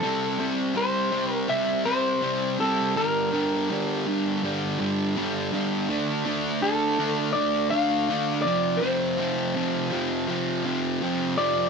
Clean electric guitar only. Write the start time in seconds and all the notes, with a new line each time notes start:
Already playing: A4
0.77 C5
1.33 A#4
1.49 E5
1.85 C5
2.60 A4
2.97 A#4
6.62 A4
7.33 D5
7.70 F5
8.42 D5
8.77 C5
11.38 D5